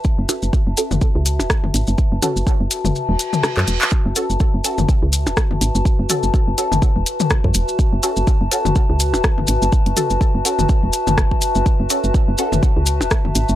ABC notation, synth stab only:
X:1
M:4/4
L:1/8
Q:"Swing 16ths" 1/4=124
K:F#m
V:1 name="Synth stab"
z [CFA] z [CFA] z4 | z [CFA] z6 | z [CFA] z [CFA] z4 | z [CFA] z [CFA] z4 |
z [CFA] z [CFA] z4 | z [CFA] z [CFA] z4 | z [CFA] z [CFA] z4 |]